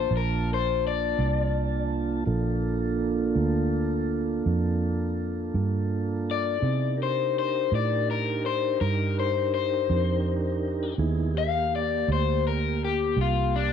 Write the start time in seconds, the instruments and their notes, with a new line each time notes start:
Already playing: tonewheel organ A#3 D4 F4 A5, overdriven electric guitar C5
0.11 fingered electric bass A#1
0.17 overdriven electric guitar A#4
0.54 overdriven electric guitar C5
0.87 overdriven electric guitar D5
1.19 fingered electric bass C2
2.26 fingered electric bass A#1, tonewheel organ A#3 D4 F4 A4
3.35 fingered electric bass D2
4.46 fingered electric bass F2
5.54 fingered electric bass G2
6.31 overdriven electric guitar D5
6.60 fingered electric bass C3, tonewheel organ B3 D#4 E4 G#4
6.97 tonewheel organ D4 D#4 G4 A#4
7.03 overdriven electric guitar C5
7.39 overdriven electric guitar C5
7.72 fingered electric bass A2, overdriven electric guitar D5
8.11 overdriven electric guitar A#4
8.46 overdriven electric guitar C5
8.81 fingered electric bass G2, overdriven electric guitar A#4
9.20 overdriven electric guitar C5
9.54 overdriven electric guitar C5
9.90 fingered electric bass F2
10.98 fingered electric bass D#2, tonewheel organ B3 D#4 E4 G#4
11.35 tonewheel organ A#3 G4, overdriven electric guitar F5
11.76 overdriven electric guitar D5
12.08 fingered electric bass D2
12.12 overdriven electric guitar C5
12.47 overdriven electric guitar A#4
12.85 overdriven electric guitar G4
13.17 fingered electric bass C2
13.21 overdriven electric guitar F4
13.56 overdriven electric guitar D4